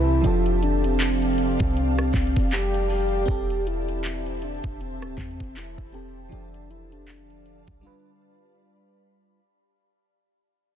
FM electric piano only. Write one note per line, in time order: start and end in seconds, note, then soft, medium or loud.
0.00 0.24 C3 medium
0.00 0.24 C4 soft
0.00 0.25 E4 soft
0.00 0.25 B4 medium
0.22 3.23 F3 medium
0.22 3.24 D4 medium
0.22 3.25 G4 medium
0.27 3.26 A4 medium
3.26 5.89 C4 medium
3.26 5.90 G4 medium
3.31 5.91 A4 medium
5.92 6.31 C4 soft
5.92 6.31 G4 soft
5.92 6.32 A4 medium
6.29 7.79 F3 medium
6.29 7.80 D4 medium
6.29 7.81 G4 medium
6.34 7.82 A4 medium
7.81 9.31 G3 medium
7.81 9.32 D4 medium
7.81 9.33 F4 medium
7.87 9.34 B4 medium